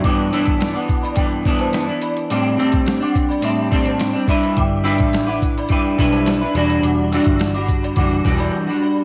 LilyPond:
<<
  \new Staff \with { instrumentName = "Synth bell" } { \time 4/4 \key g \major \tempo 4 = 106 <g'' d'''>8 <g'' e'''>8 r16 <fis'' d'''>16 r16 <d'' b''>16 <g'' d'''>16 r8 <c'' a''>16 r8 <d'' b''>16 r16 | <g'' d'''>8 <g'' e'''>8 r16 <fis'' d'''>16 r16 <d'' b''>16 <e'' c'''>16 r8 <c'' a''>16 r8 <d'' b''>16 r16 | <g'' d'''>8 <g'' e'''>8 r16 <fis'' d'''>16 r16 <d'' b''>16 <g'' d'''>16 r8 <c'' a''>16 r8 <d'' b''>16 r16 | <fis'' d'''>8 <g'' e'''>8 r16 <fis'' d'''>16 r16 <d'' b''>16 <fis'' d'''>16 r8 <d'' b''>16 r8 <d'' b''>16 r16 | }
  \new Staff \with { instrumentName = "Clean electric guitar" } { \time 4/4 \key g \major <g, e b d'>8 <g, e b d'>8. <e b d'>8. <g, e b d'>8 <g, e b d'>8. <e b d'>8. | <a, g c' d'>8 <a, g c' d'>8. <g c' d'>8. <a, g c' d'>8 <a, g c' d'>8. <g c' d'>16 <g d' e' b'>8~ | <g d' e' b'>8 <g d' e' b'>8. <d' e' b'>8. <g d' e' b'>8 <g d' e' b'>8. <d' e' b'>16 <e g d' fis'>8~ | <e g d' fis'>8 <e g d' fis'>8. <g d' fis'>8. <e g d' fis'>8 <e g d' fis'>8. <g d' fis'>8. | }
  \new Staff \with { instrumentName = "Picked electric bass" } { \clef bass \time 4/4 \key g \major r1 | r1 | g,,8. a,,4~ a,,16 g,,8 b,,4 e,,8 | e,,8. g,,4~ g,,16 fis,,8 e,,8 r4 | }
  \new DrumStaff \with { instrumentName = "Drums" } \drummode { \time 4/4 <hh bd>8 hh16 <hh bd>16 <hh sn>8 <hh bd>16 hh16 <hh bd>8 <hh bd>16 hh16 <hh sn>8 hh16 hh16 | hh8 hh16 <hh bd>16 <hh sn>8 <hh bd>16 hh16 hh8 <hh bd>16 hh16 <hh sn>8 <hh bd>16 hh16 | <hh bd>8 hh16 <hh bd>16 <hh sn>8 <hh bd>16 hh16 <hh bd>8 <hh bd>16 hh16 <hh sn>8 hh16 hh16 | hh8 hh16 <hh bd>16 <hh sn>16 hh16 <hh bd>16 hh16 <hh bd>16 hh16 <hh bd>16 <hh sn>16 r4 | }
>>